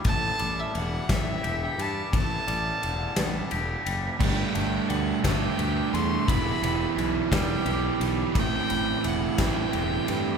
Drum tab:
CC |------|------|x-----|------|
RD |xxxxxx|xxxxxx|-xxxxx|xxxxxx|
SD |---o--|---o--|---o--|---o--|
BD |o--o--|o-----|o--o--|o--o--|

CC |------|
RD |xxxxxx|
SD |---o--|
BD |o--o--|